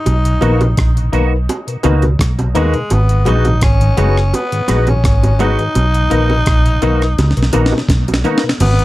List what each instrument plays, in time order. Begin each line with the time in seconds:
Already playing: tenor saxophone D#4
0.06 fingered electric bass B1, closed hi-hat, high bongo
0.25 tonewheel organ B2, closed hi-hat
0.41 fingered electric bass A#1, tonewheel organ D#3 A#3 B3, clean electric guitar A#3 D#4 F#4, reed electric piano D#4 A#4 B4, closed hi-hat, high bongo
0.61 tonewheel organ B2, closed hi-hat, high bongo
0.77 fingered electric bass A#1, kick, cross-stick, closed hi-hat
0.97 tonewheel organ B2, closed hi-hat
1.12 fingered electric bass B1, tonewheel organ D#3 A#3 B3, clean electric guitar A#3 D#4 F#4, reed electric piano D#4 A#4 B4, closed hi-hat
1.49 closed hi-hat, high bongo
1.67 tonewheel organ B2, reed electric piano A#4 B4, closed hi-hat
1.83 fingered electric bass C#2, tonewheel organ D#3 A#3 B3, clean electric guitar A#3 D#4 F#4, reed electric piano D#4 A#4 B4, closed hi-hat, high bongo
2.02 tonewheel organ B2, closed hi-hat, high bongo
2.19 fingered electric bass B1, kick, cross-stick, closed hi-hat
2.39 tonewheel organ B2, closed hi-hat, high bongo
2.55 fingered electric bass D#2, tonewheel organ D#3 A#3 B3, tenor saxophone G#3, clean electric guitar A#3 D#4 F#4, reed electric piano D#4 A#4 B4, closed hi-hat, low bongo
2.74 tonewheel organ B2, muted clean electric guitar stroke, closed hi-hat
2.90 fingered electric bass G#1, tenor saxophone B3, closed hi-hat, high bongo
3.09 tonewheel organ G#2 D#3, closed hi-hat
3.25 fingered electric bass A#1, tonewheel organ F#3 G#3 B3, clean electric guitar B3 D#4 F#4, tenor saxophone D#4, reed electric piano F#4 G#4 B4, closed hi-hat, high bongo
3.45 tonewheel organ G#2 D#3, closed hi-hat, high bongo
3.61 fingered electric bass G#1, tenor saxophone C#4, kick, cross-stick, closed hi-hat
3.81 tonewheel organ G#2 D#3, closed hi-hat
3.97 fingered electric bass F#1, tonewheel organ F#3 G#3 B3, clean electric guitar B3 D#4 F#4, reed electric piano F#4 G#4 B4, closed hi-hat
4.17 cross-stick
4.34 tenor saxophone B3, closed hi-hat, high bongo
4.52 tonewheel organ G#2 D#3, reed electric piano G#4 B4, closed hi-hat
4.68 fingered electric bass A#1, tonewheel organ F#3 G#3 B3, clean electric guitar B3 D#4 F#4, reed electric piano F#4 G#4 B4, cross-stick, closed hi-hat, high bongo
4.87 tonewheel organ G#2 D#3, tenor saxophone C#4, closed hi-hat, high bongo
5.04 fingered electric bass G#1, kick, cross-stick, closed hi-hat
5.23 tonewheel organ G#2 D#3, closed hi-hat, high bongo
5.39 tonewheel organ F#3 G#3 B3, clean electric guitar B3 D#4 F#4, tenor saxophone D#4, reed electric piano F#4 G#4 B4, closed hi-hat, low bongo
5.59 tonewheel organ G#2 D#3, muted clean electric guitar stroke, closed hi-hat
5.75 fingered electric bass B1, closed hi-hat, high bongo
5.94 tonewheel organ B2, closed hi-hat
6.10 fingered electric bass A#1, tonewheel organ D#3 A#3 B3, clean electric guitar A#3 D#4 F#4, reed electric piano D#4 A#4 B4, closed hi-hat, high bongo
6.30 tonewheel organ B2, high bongo
6.46 fingered electric bass A#1, kick, cross-stick, closed hi-hat
6.66 tonewheel organ B2, closed hi-hat
6.82 fingered electric bass B1, tonewheel organ D#3 A#3 B3, clean electric guitar A#3 D#4 F#4, reed electric piano D#4 A#4 B4, closed hi-hat, low bongo
7.02 cross-stick, closed hi-hat
7.19 fingered electric bass C#2, snare, closed hi-hat, high bongo
7.31 snare
7.37 fingered electric bass B1, tonewheel organ B2, reed electric piano A#4 B4, closed hi-hat
7.43 snare
7.53 fingered electric bass A#1, tonewheel organ D#3 A#3 B3, clean electric guitar A#3 D#4 F#4, reed electric piano D#4 A#4 B4, closed hi-hat, high bongo
7.66 snare
7.72 tonewheel organ B2, high bongo
7.78 snare
7.89 fingered electric bass B1, kick, snare, closed hi-hat
8.08 tonewheel organ B2, closed hi-hat, high bongo
8.14 snare
8.24 tonewheel organ D#3 A#3 B3, clean electric guitar A#3 D#4 F#4, reed electric piano D#4 A#4 B4, closed hi-hat, low bongo
8.38 snare
8.44 tonewheel organ B2, muted clean electric guitar stroke
8.49 snare
8.60 fingered electric bass G#1, tenor saxophone B3, closed hi-hat, crash, high bongo
8.79 tonewheel organ G#2 D#3, closed hi-hat